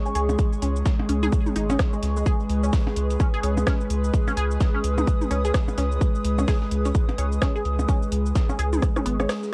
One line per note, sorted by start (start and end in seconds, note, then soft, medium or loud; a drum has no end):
0.00 9.54 G#3 medium
0.00 9.54 G#4 medium
0.00 1.97 C#5 loud
0.00 3.94 C#6 medium
0.06 0.10 C#4 medium
0.06 cabasa soft
0.15 0.36 C#2 loud
0.15 0.22 G#4 loud
0.15 closed hi-hat medium
0.15 open hi-hat loud
0.29 percussion blips medium
0.29 cabasa soft
0.39 kick loud
0.39 closed hi-hat loud
0.39 cabasa medium
0.53 cabasa soft
0.62 0.83 C#2 loud
0.62 0.66 C#4 medium
0.62 closed hi-hat medium
0.62 open hi-hat loud
0.76 cabasa soft
0.85 kick loud
0.85 snare loud
0.85 closed hi-hat medium
0.85 cabasa medium
0.99 percussion blips medium
1.09 1.29 C#2 medium
1.09 1.15 C#4 medium
1.09 closed hi-hat medium
1.09 open hi-hat medium
1.23 1.27 G#4 loud
1.23 mid tom medium
1.23 cabasa soft
1.32 kick loud
1.32 closed hi-hat medium
1.32 cabasa medium
1.46 mid tom medium
1.46 cabasa soft
1.56 1.76 G#1 loud
1.56 1.66 D#4 medium
1.56 closed hi-hat medium
1.56 open hi-hat medium
1.70 1.74 C#4 loud
1.70 1.75 C#4 medium
1.70 1.75 G#4 medium
1.70 1.75 C#5 loud
1.70 closed hi-hat soft
1.70 percussion blips medium
1.70 cabasa soft
1.79 9.54 B4 medium
1.79 kick loud
1.79 cross-stick loud
1.79 snare loud
1.79 closed hi-hat medium
1.79 cabasa medium
1.93 1.96 G#3 medium
1.93 cabasa soft
2.03 2.23 C#2 medium
2.03 snare soft
2.03 closed hi-hat medium
2.03 open hi-hat loud
2.17 2.23 G#3 medium
2.17 cabasa soft
2.26 2.33 G#4 loud
2.26 kick loud
2.26 closed hi-hat medium
2.26 cabasa medium
2.40 cabasa soft
2.50 2.70 C#2 loud
2.50 closed hi-hat medium
2.50 open hi-hat loud
2.63 2.66 C#4 medium
2.63 cabasa soft
2.73 kick loud
2.73 snare loud
2.73 open hi-hat medium
2.73 cabasa medium
2.87 snare soft
2.87 percussion blips medium
2.96 3.17 C#2 medium
2.96 closed hi-hat medium
2.96 open hi-hat medium
3.10 closed hi-hat soft
3.10 cabasa soft
3.20 3.26 C#4 medium
3.20 kick loud
3.20 closed hi-hat medium
3.20 cabasa soft
3.34 3.38 G#4 loud
3.34 closed hi-hat soft
3.43 3.64 C#2 medium
3.43 3.51 C#4 medium
3.43 3.51 G#4 medium
3.43 3.51 C#5 loud
3.43 closed hi-hat medium
3.43 open hi-hat medium
3.57 percussion blips medium
3.57 cabasa soft
3.67 3.71 C#4 medium
3.67 kick loud
3.67 cross-stick loud
3.67 snare loud
3.67 closed hi-hat medium
3.67 cabasa soft
3.81 9.54 D#6 medium
3.81 cabasa soft
3.90 4.11 C#2 loud
3.90 closed hi-hat medium
3.90 open hi-hat loud
4.04 cabasa soft
4.14 kick loud
4.14 closed hi-hat loud
4.14 cabasa medium
4.28 4.32 C#4 medium
4.28 percussion blips medium
4.28 cabasa soft
4.37 4.58 C#2 loud
4.37 4.44 G#4 loud
4.37 closed hi-hat medium
4.37 open hi-hat medium
4.51 cabasa soft
4.61 kick loud
4.61 snare loud
4.61 closed hi-hat medium
4.61 cabasa medium
4.74 4.77 C#4 medium
4.84 5.04 C#2 medium
4.84 closed hi-hat medium
4.84 open hi-hat medium
4.98 mid tom medium
4.98 percussion blips medium
4.98 cabasa soft
5.07 kick loud
5.07 closed hi-hat medium
5.07 cabasa medium
5.21 mid tom medium
5.21 cabasa soft
5.31 5.51 C#2 medium
5.31 5.39 C#4 medium
5.31 5.37 C#4 medium
5.31 5.39 G#4 medium
5.31 5.39 C#5 loud
5.31 closed hi-hat medium
5.31 open hi-hat medium
5.45 5.49 G#4 loud
5.45 closed hi-hat soft
5.45 cabasa soft
5.54 kick loud
5.54 cross-stick loud
5.54 snare loud
5.54 closed hi-hat loud
5.54 cabasa medium
5.68 percussion blips medium
5.68 cabasa soft
5.78 5.98 C#2 loud
5.78 5.82 C#4 medium
5.78 snare soft
5.78 closed hi-hat medium
5.78 open hi-hat medium
5.92 cabasa soft
6.01 kick loud
6.01 closed hi-hat medium
6.01 cabasa medium
6.15 cabasa soft
6.25 6.45 C#2 loud
6.25 closed hi-hat medium
6.25 open hi-hat medium
6.38 6.43 C#4 medium
6.38 percussion blips medium
6.38 cabasa soft
6.48 6.55 G#4 loud
6.48 kick loud
6.48 snare loud
6.48 open hi-hat medium
6.48 cabasa medium
6.62 snare soft
6.71 6.92 C#2 medium
6.71 closed hi-hat medium
6.71 open hi-hat medium
6.85 6.88 C#4 medium
6.85 closed hi-hat soft
6.85 cabasa soft
6.95 kick loud
6.95 closed hi-hat medium
6.95 cabasa medium
7.09 closed hi-hat soft
7.09 percussion blips medium
7.18 7.39 C#2 medium
7.18 7.26 C#4 medium
7.18 7.26 G#4 medium
7.18 7.26 C#5 loud
7.18 closed hi-hat medium
7.18 open hi-hat medium
7.32 cabasa soft
7.42 7.48 C#4 medium
7.42 kick loud
7.42 cross-stick loud
7.42 snare loud
7.42 closed hi-hat medium
7.42 cabasa medium
7.56 7.60 G#4 loud
7.56 cabasa soft
7.65 7.86 C#2 loud
7.65 closed hi-hat medium
7.65 open hi-hat medium
7.79 percussion blips medium
7.79 cabasa soft
7.89 7.93 C#4 medium
7.89 kick loud
7.89 closed hi-hat medium
7.89 cabasa medium
8.03 cabasa soft
8.12 8.33 C#2 loud
8.12 closed hi-hat medium
8.12 open hi-hat medium
8.26 cabasa soft
8.35 kick loud
8.35 snare loud
8.35 closed hi-hat medium
8.35 cabasa medium
8.49 8.54 C#4 medium
8.49 percussion blips medium
8.49 cabasa soft
8.59 8.79 C#2 medium
8.59 8.65 G#4 loud
8.59 closed hi-hat medium
8.59 open hi-hat medium
8.73 mid tom medium
8.73 cabasa soft
8.82 kick loud
8.82 cross-stick medium
8.82 closed hi-hat medium
8.82 cabasa medium
8.96 8.99 C#4 medium
8.96 cross-stick medium
8.96 mid tom medium
8.96 cabasa soft
9.06 9.26 G#1 loud
9.06 9.12 B3 medium
9.06 closed hi-hat medium
9.06 open hi-hat medium
9.20 9.25 C#4 medium
9.20 9.25 G#4 medium
9.20 9.25 C#5 loud
9.20 cross-stick medium
9.20 closed hi-hat soft
9.20 percussion blips medium
9.20 cabasa soft
9.29 cross-stick medium
9.29 snare loud
9.29 open hi-hat medium
9.29 cabasa medium
9.43 snare soft
9.43 cabasa soft